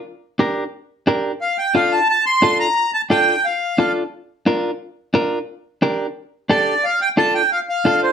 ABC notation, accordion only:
X:1
M:4/4
L:1/8
Q:1/4=177
K:Dm
V:1 name="Accordion"
z8 | f g f a a c'2 b- | b a g2 f3 z | z8 |
z6 d2 | f g a g f f2 c |]